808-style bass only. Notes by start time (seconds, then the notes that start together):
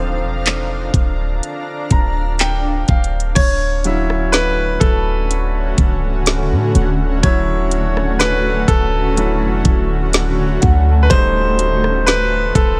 Already playing: D1
0.22 E1
0.94 D1
1.91 D1
2.89 D1
3.36 D1
4.81 D1
5.78 C#1
6.51 A2
6.75 D1
7.23 D1
8.68 D1
9.41 E1
9.65 D1
10.63 D2
11.11 D1
12.55 D1